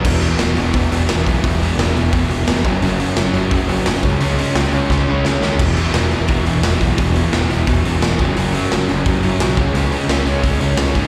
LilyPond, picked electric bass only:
\new Staff \with { instrumentName = "Picked electric bass" } { \clef bass \time 4/4 \key e \major \tempo 4 = 173 e,,4 e,,8 e,,8 e,,8 e,,8 e,,8 b,,8 | e,,4 e,,8 e,,8 e,,8 e,,8 f,,8 fis,,8 | fis,,4 fis,,8 fis,,8 fis,,8 fis,,8 fis,,8 cis,8 | cis,4 cis,8 cis,8 cis,8 cis,8 cis,8 dis,8 |
e,,4 e,,8 e,,8 e,,8 e,,8 e,,8 b,,8 | e,,4 e,,8 e,,8 e,,8 e,,8 e,,8 fis,,8 | fis,,4 fis,,8 fis,,8 fis,,8 fis,,8 b,,8 cis,8 | cis,4 cis,8 cis,8 cis,8 cis,8 cis,8 gis,8 | }